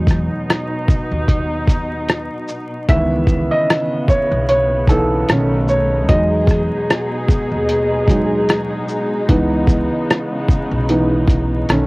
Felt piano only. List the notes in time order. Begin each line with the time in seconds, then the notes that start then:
Already playing: F#3 G#3 D#4
2.89 D#3 E3 B3 E5
3.51 D#5
4.09 C#5
4.49 C#5
4.89 E3 B3 D#4 A4
5.30 D#3 A3 C#4
5.69 C#5
6.08 F#3 G#3 D#4 D#5
8.09 F#3 G#3 D#4
9.29 E3 B3 D#4
10.90 E3 B3 D#4
11.69 D#3 A3 C#4